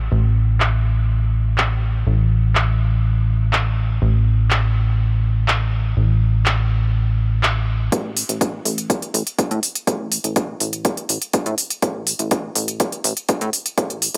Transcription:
0.12 2.05 A1 medium
0.60 clap loud
1.58 clap loud
2.07 4.00 A1 medium
2.55 clap loud
3.53 clap loud
4.02 5.95 A1 medium
4.51 clap loud
5.48 clap loud
5.97 7.90 A1 medium
6.46 clap loud
7.43 clap loud
7.92 8.24 A1 loud
7.92 kick loud
7.92 closed hi-hat medium
8.17 open hi-hat loud
8.29 8.60 A1 medium
8.29 closed hi-hat medium
8.41 kick loud
8.41 closed hi-hat medium
8.65 8.97 A1 medium
8.65 open hi-hat loud
8.78 closed hi-hat medium
8.90 kick loud
8.90 closed hi-hat medium
9.02 closed hi-hat soft
9.14 9.23 A1 medium
9.14 open hi-hat loud
9.27 closed hi-hat medium
9.39 kick loud
9.39 closed hi-hat medium
9.51 9.60 A2 loud
9.51 closed hi-hat soft
9.63 open hi-hat loud
9.75 closed hi-hat medium
9.87 10.19 A1 loud
9.87 kick loud
9.87 closed hi-hat medium
10.12 open hi-hat loud
10.24 10.55 A1 medium
10.24 closed hi-hat medium
10.36 kick loud
10.36 closed hi-hat medium
10.60 10.92 A1 medium
10.60 open hi-hat loud
10.73 closed hi-hat medium
10.85 kick loud
10.85 closed hi-hat medium
10.97 closed hi-hat soft
11.09 11.19 A1 medium
11.09 open hi-hat loud
11.22 closed hi-hat soft
11.33 kick loud
11.33 closed hi-hat medium
11.46 11.55 A2 loud
11.46 closed hi-hat soft
11.58 open hi-hat loud
11.70 closed hi-hat medium
11.82 12.14 A1 loud
11.82 kick loud
11.82 closed hi-hat medium
12.07 open hi-hat loud
12.19 12.51 A1 medium
12.19 closed hi-hat medium
12.31 kick loud
12.31 closed hi-hat medium
12.55 12.87 A1 medium
12.55 open hi-hat loud
12.68 closed hi-hat medium
12.80 kick loud
12.80 closed hi-hat medium
12.92 closed hi-hat soft
13.04 13.14 A1 medium
13.04 open hi-hat loud
13.17 closed hi-hat soft
13.29 kick loud
13.29 closed hi-hat medium
13.41 13.50 A2 loud
13.41 closed hi-hat soft
13.53 open hi-hat loud
13.66 closed hi-hat medium
13.78 14.09 A1 loud
13.78 kick loud
13.78 closed hi-hat medium
13.90 closed hi-hat soft
14.02 open hi-hat loud

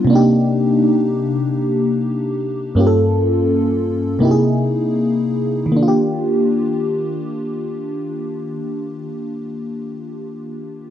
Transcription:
0.00 0.11 G3 medium
0.00 0.11 B3 medium
0.00 0.10 D4 medium
0.00 0.14 F4 medium
0.05 2.71 C3 medium
0.05 2.72 A#3 medium
0.10 2.74 D4 medium
0.10 2.75 D#4 medium
0.15 2.76 G4 medium
2.75 4.20 G2 medium
2.75 4.19 A#3 medium
2.75 4.21 C#4 medium
2.75 4.22 F4 medium
2.81 2.86 G4 medium
2.87 4.26 A4 medium
4.19 5.76 C3 medium
4.19 5.71 A#3 medium
4.19 5.77 D#4 medium
4.19 5.78 E4 medium
4.25 4.31 G4 medium
4.31 5.82 G#4 medium
5.66 8.83 D#3 medium
5.72 8.89 A#3 medium
5.77 8.93 D4 medium
5.83 8.99 F4 medium
5.88 9.05 G4 medium

